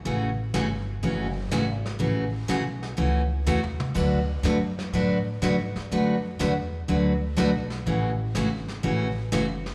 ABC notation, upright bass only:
X:1
M:4/4
L:1/8
Q:"Swing" 1/4=123
K:A
V:1 name="Upright bass" clef=bass
A,,,2 =G,,,2 F,,,2 ^G,,,2 | A,,,2 B,,,2 C,,2 E,,2 | D,,2 F,,2 A,,2 G,, z | F,,2 E,,2 D,,2 B,,,2 |
A,,,2 G,,,2 A,,,2 F,,,2 |]